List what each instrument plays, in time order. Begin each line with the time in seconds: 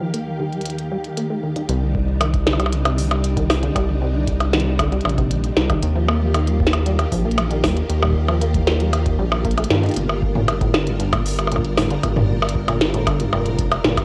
Already playing: string machine D#2 D#3 G4 F5
0.01 acid bass F3
0.14 acid bass A#3, closed hi-hat
0.27 acid bass D#3
0.40 acid bass D#3
0.53 acid bass G3, closed hi-hat
0.61 closed hi-hat
0.65 closed hi-hat
0.70 closed hi-hat
0.78 closed hi-hat
0.91 acid bass G3
1.04 closed hi-hat
1.17 acid bass A#3, closed hi-hat
1.30 acid bass A3
1.43 acid bass D#3
1.56 acid bass D#4, closed hi-hat
1.69 analog synth bass C2, acid bass C3, string machine C3 G3 D4 D#4, closed hi-hat
1.82 acid bass D#3
1.95 kick
2.21 acid bass D#3, closed hi-hat, percussion blips
2.34 kick, closed hi-hat
2.46 acid bass D3, snare, percussion blips
2.53 percussion blips
2.59 acid bass G3, closed hi-hat, percussion blips
2.66 percussion blips
2.72 acid bass C3, closed hi-hat
2.85 acid bass C3, closed hi-hat, percussion blips
2.98 acid bass D#3, open hi-hat
3.11 closed hi-hat, percussion blips
3.24 closed hi-hat
3.37 acid bass D#3, kick, closed hi-hat
3.50 snare, open hi-hat, percussion blips
3.63 acid bass D3, closed hi-hat
3.75 analog synth bass C2, acid bass G3, kick, closed hi-hat, percussion blips
3.88 acid bass C3
4.02 acid bass C3
4.14 acid bass D#3
4.27 kick, closed hi-hat
4.40 closed hi-hat, percussion blips
4.53 acid bass D#3, snare
4.60 closed hi-hat
4.79 acid bass D3, kick, closed hi-hat, percussion blips
4.92 acid bass G3, closed hi-hat
5.01 closed hi-hat
5.05 analog synth bass A#1, acid bass C3, percussion blips
5.09 closed hi-hat
5.18 acid bass C3, kick, closed hi-hat
5.31 acid bass D#3, closed hi-hat
5.44 closed hi-hat
5.57 analog synth bass C2, snare
5.70 acid bass D#3, kick, closed hi-hat, percussion blips
5.83 analog synth bass D#2, string machine D#3 A#3 F4 G4, closed hi-hat
5.95 acid bass F3
6.08 acid bass A#3, percussion blips
6.21 acid bass D#3
6.34 acid bass D#3, closed hi-hat, percussion blips
6.47 acid bass G3, closed hi-hat
6.60 kick
6.67 snare
6.73 closed hi-hat, percussion blips
6.86 acid bass G3, closed hi-hat
6.99 closed hi-hat, percussion blips
7.12 analog synth bass A#1, acid bass F3, kick, open hi-hat
7.25 acid bass A#3
7.31 closed hi-hat
7.38 acid bass D#3, closed hi-hat, percussion blips
7.51 acid bass D#3, closed hi-hat
7.63 analog synth bass D#2, acid bass G3, kick, snare, open hi-hat, percussion blips
7.77 closed hi-hat
7.90 analog synth bass D#2, closed hi-hat
8.02 acid bass G3, kick, percussion blips
8.05 kick
8.08 kick
8.10 kick
8.13 kick
8.28 acid bass F3, percussion blips
8.41 acid bass A#3, closed hi-hat
8.54 acid bass D#3, kick, closed hi-hat
8.67 acid bass D#3, snare
8.80 acid bass G3, closed hi-hat
8.93 closed hi-hat, percussion blips
9.06 kick, closed hi-hat
9.19 analog synth bass A#1, acid bass G3
9.32 percussion blips
9.45 acid bass A#3, kick, closed hi-hat
9.51 closed hi-hat
9.58 acid bass A3, closed hi-hat, percussion blips
9.64 closed hi-hat
9.70 analog synth bass G2, acid bass D#3, snare
9.83 acid bass D#4, closed hi-hat
9.86 closed hi-hat
9.89 closed hi-hat
9.91 closed hi-hat
9.94 closed hi-hat
9.96 analog synth bass G1, acid bass A#2, string machine G3 D4 A#4, closed hi-hat
10.09 percussion blips
10.22 kick
10.35 acid bass A#2, mid tom
10.48 closed hi-hat, percussion blips
10.61 acid bass A2, kick, closed hi-hat
10.74 acid bass D3, snare, percussion blips
10.87 acid bass G2, closed hi-hat
11.00 acid bass G2, closed hi-hat
11.13 acid bass A#2, kick, closed hi-hat, percussion blips
11.26 open hi-hat
11.28 open hi-hat
11.31 open hi-hat
11.34 open hi-hat
11.36 closed hi-hat, open hi-hat, percussion blips
11.47 percussion blips
11.52 acid bass A#2, closed hi-hat
11.56 kick, percussion blips
11.65 closed hi-hat
11.78 acid bass A2, snare, open hi-hat, percussion blips
11.90 acid bass D3, closed hi-hat
12.03 analog synth bass G1, acid bass G2, kick, closed hi-hat, percussion blips
12.16 acid bass G2, mid tom
12.29 acid bass A#2
12.42 percussion blips
12.49 closed hi-hat
12.55 kick
12.68 acid bass A#2, closed hi-hat, percussion blips
12.81 snare
12.94 acid bass A2, closed hi-hat
13.07 acid bass D3, kick, closed hi-hat, percussion blips
13.20 acid bass G2, closed hi-hat
13.33 analog synth bass F1, acid bass G2, percussion blips
13.46 acid bass A#2, closed hi-hat
13.59 kick, closed hi-hat
13.72 closed hi-hat, percussion blips
13.84 analog synth bass G1, acid bass A#2, snare
13.97 kick, closed hi-hat, percussion blips